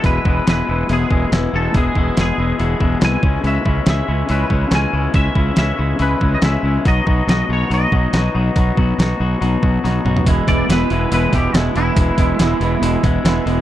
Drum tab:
HH |o---o---o---o---|o---o---o---o---|o---o---o---o---|o---o---o---o---|
SD |----o-------o---|----o-------o---|----o-------o---|----o-------o---|
T2 |----------------|----------------|----------------|----------------|
FT |----------------|----------------|----------------|----------------|
BD |o-o-------o-----|o-o-------o---o-|--o-------o-----|o-o-------o-----|

HH |o---o---o---o---|o---o---o---o---|o-o-o-o-o-o-o-o-|o-o-o-o-o-o-o-o-|
SD |----o-------o---|----o-------o---|----o-------o---|----o-------o---|
T2 |----------------|--------------o-|----------------|----------------|
FT |----------------|---------------o|----------------|----------------|
BD |o-o-------o-----|o-o-------o-----|o-o-------o-----|o-o-------o-----|